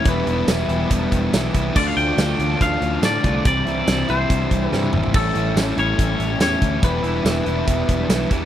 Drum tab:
CC |----------------|x---------------|----------------|x---------------|
HH |x-x-x-x-x-x-x-x-|--x-x-x-x-x-x-x-|x-x-x-x-x-x-----|--x-x-x-x-x-x-x-|
TB |----x-------x---|----x-------x---|----x-----------|----x-------x---|
SD |----o-------o---|----o-------o---|----o-------o---|----o-------o---|
T1 |----------------|----------------|-------------o--|----------------|
T2 |----------------|----------------|--------------o-|----------------|
FT |----------------|----------------|---------------o|----------------|
BD |o-------o-o---o-|o-------o-----o-|o-------o-o-----|o-------o-----o-|

CC |----------------|
HH |x-x-x-x-x-x-x-x-|
TB |----x-------x---|
SD |----o-------o---|
T1 |----------------|
T2 |----------------|
FT |----------------|
BD |o-------o-o---o-|